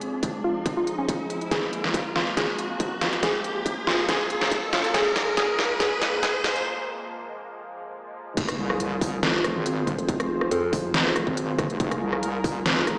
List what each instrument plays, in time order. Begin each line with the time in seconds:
Already playing: analog synth pad F2 F3 G#3 C4, riser
0.01 closed hi-hat
0.23 kick, closed hi-hat
0.44 synth pluck F4
0.66 kick, closed hi-hat
0.77 synth pluck F4
0.87 closed hi-hat
0.98 synth pluck C#4
1.09 kick, closed hi-hat
1.30 closed hi-hat
1.41 closed hi-hat
1.51 analog synth pad A#3, synth pluck G#4, kick, snare, closed hi-hat
1.73 closed hi-hat
1.84 snare
1.94 kick, closed hi-hat
2.16 synth pluck F4, snare
2.37 synth pluck G#4, kick, snare, closed hi-hat
2.59 closed hi-hat
2.80 kick, closed hi-hat
3.01 synth pluck F4, snare, closed hi-hat
3.13 closed hi-hat
3.23 synth pluck G#4, kick, snare, closed hi-hat
3.44 closed hi-hat
3.66 kick, closed hi-hat
3.87 synth pluck F4, snare
4.09 synth pluck G#4, kick, snare, closed hi-hat
4.30 closed hi-hat
4.41 snare
4.51 kick, closed hi-hat
4.73 synth pluck F4, snare, closed hi-hat
4.84 closed hi-hat
4.94 synth pluck G#4, kick, snare, closed hi-hat
5.16 snare, closed hi-hat
5.37 synth pluck G#4, kick, snare, closed hi-hat
5.59 snare
5.80 synth pluck G#4, kick, snare, closed hi-hat
6.02 snare, closed hi-hat
6.23 synth pluck G#4, kick, snare, closed hi-hat
6.44 snare, closed hi-hat
6.56 closed hi-hat
8.37 wobble bass F1, analog synth pad F3 F4 G#4 C5, kick, closed hi-hat, crash, impact
8.49 cross-stick, closed hi-hat
8.59 wobble bass C2
8.70 cross-stick
8.80 closed hi-hat
9.01 kick, open hi-hat
9.23 wobble bass F1, snare, closed hi-hat
9.44 cross-stick, closed hi-hat
9.56 wobble bass G#1
9.66 closed hi-hat
9.87 kick, closed hi-hat
9.98 wobble bass F1, closed hi-hat
10.09 kick, closed hi-hat
10.20 wobble bass F1, cross-stick, closed hi-hat
10.41 cross-stick
10.51 wobble bass F2, closed hi-hat
10.73 kick, open hi-hat
10.94 wobble bass F1, snare, closed hi-hat
11.16 cross-stick, closed hi-hat
11.27 wobble bass G#1, kick
11.37 closed hi-hat
11.59 kick, cross-stick, closed hi-hat
11.70 wobble bass F1, closed hi-hat
11.80 wobble bass F1, analog synth pad A#4, kick, closed hi-hat
11.91 cross-stick, closed hi-hat
12.02 wobble bass C2
12.13 cross-stick
12.23 closed hi-hat
12.44 kick, open hi-hat
12.66 wobble bass F1, snare, closed hi-hat
12.87 cross-stick, closed hi-hat